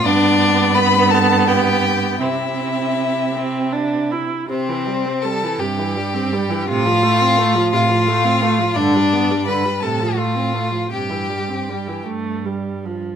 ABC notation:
X:1
M:6/8
L:1/16
Q:3/8=55
K:C
V:1 name="Violin"
d4 b2 a2 g4 | e8- e2 z2 | c4 a2 g6 | f6 f6 |
d4 b2 a2 f4 | g6 z6 |]
V:2 name="Violin"
D4 B2 A2 G4 | E8- E2 z2 | C4 A2 G6 | F6 F6 |
D4 B2 A2 F4 | G6 z6 |]
V:3 name="Viola" clef=bass
B,12 | C6 C2 D2 E2 | C, E, G, C G, E, C, E, G, C G, E, | C, F, A, C A, F, C, F, A, C A, F, |
D, G, B, G, D, G, C, F, A, C A, F, | C, E, G, C G, E, A,2 G,2 F,2 |]
V:4 name="Cello" clef=bass
G,,12 | C,8- C,2 z2 | C,6 G,,6 | A,,6 A,,6 |
G,,6 A,,6 | G,,6 G,,6 |]